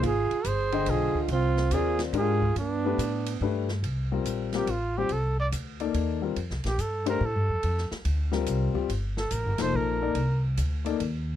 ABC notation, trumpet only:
X:1
M:3/4
L:1/8
Q:"Swing" 1/4=142
K:Flyd
V:1 name="Trumpet"
_A2 c2 A2 | F2 _A z A2 | D4 z2 | [K:Cdor] z3 G F G |
A d z4 | z G A B A2- | A z4 z | z A B c B2- |
B z4 z |]